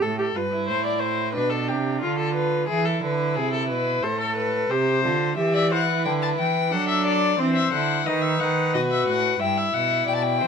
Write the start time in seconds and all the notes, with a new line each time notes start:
0.02 A2 A4
0.19 G4 A4
0.35 G2 F4 B4
0.52 E4
0.68 A2 C5
0.86 D5
1.00 C5
1.33 B2 D4 B4
1.50 A4
1.68 C3 G4
2.01 D3 F4
2.19 A4
2.34 B4
2.68 E3 E4 G#4
2.85 A4
3.03 D3 B4
3.36 C3 G#4
3.53 A4
3.69 B2 B4
4.03 A2 A4 C5
4.21 A4
4.36 B4
4.70 C3 G4 C5
5.04 D3 F4
5.37 E3 G4 E5
5.54 D5 E5
5.71 E4 C5 F#5
5.87 B4
6.05 D3 G5
6.22 A5
6.38 E3 G5
6.72 F#3 D4 A4 F#5
6.88 E5
7.06 D5
7.39 E3 C4 C5
7.56 E5
7.73 D3 E4 F#5
8.06 D#3 D#4 B4 D#5
8.22 E5
8.40 D#3 F#5
8.74 B2 F#4 D#5
8.91 E5
9.08 A2 F#5
9.39 G2 E4 E5 G5
9.58 E5
9.73 B2 F#5
10.07 B2 D5 G5
10.15 A5
10.22 G5
10.40 E3 C5